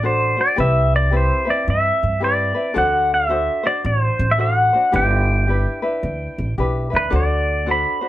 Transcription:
Already playing: upright bass A1
0.03 ukulele D4 F#4 A4 C5, pedal steel guitar C5
0.37 ukulele D4 F#4 C5
0.41 pedal steel guitar D5
0.56 upright bass C2, ukulele C4 E4 G4 B4
0.60 pedal steel guitar E5
0.96 pedal steel guitar D5
1.11 ukulele C4 E4 G4 B4
1.17 pedal steel guitar C5
1.45 ukulele C4 E4 B4
1.50 pedal steel guitar D5
1.68 upright bass G2, pedal steel guitar E5
2.03 upright bass G2
2.20 ukulele C4 E4 G4 B4
2.24 pedal steel guitar D5
2.54 ukulele C4 E4 B4
2.74 upright bass D2, ukulele D4 F#4 A4 C5
2.78 pedal steel guitar F#5
3.14 pedal steel guitar E5
3.29 ukulele D4 F#4 A4 C5
3.63 ukulele D4 F#4 C5, pedal steel guitar D5
3.85 upright bass A1, pedal steel guitar C#5
4.03 pedal steel guitar C5
4.19 upright bass A1
4.31 pedal steel guitar E5
4.37 ukulele D4 F#4 A4 C5, pedal steel guitar F#5
4.73 ukulele D4 F#4 C5
4.92 upright bass G1, ukulele D4 E4 G4 B4, pedal steel guitar G5
5.47 ukulele D4 E4 G4 B4
5.82 ukulele D4 E4 B4
6.03 upright bass D2
6.38 upright bass A1
6.58 upright bass B1, ukulele D4 E4 G4 B4
6.90 upright bass D2, ukulele D4 E4 B4
6.96 pedal steel guitar B4
7.10 upright bass D2, ukulele D4 F#4 A4 C5
7.16 pedal steel guitar D5
7.66 ukulele D4 F#4 A4 C5
7.71 pedal steel guitar B5
8.01 ukulele D4 F#4 C5

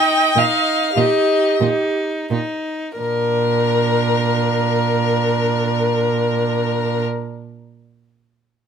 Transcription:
Already playing: violin D#4 G5, viola D#5
0.36 cello A#2, violin D#4 F5
0.95 cello A#2, violin D#4 D#5, viola G4
1.61 cello A#2, violin D#4
2.31 cello A#2, violin D#4
2.99 cello A#2, viola D4, violin A#4

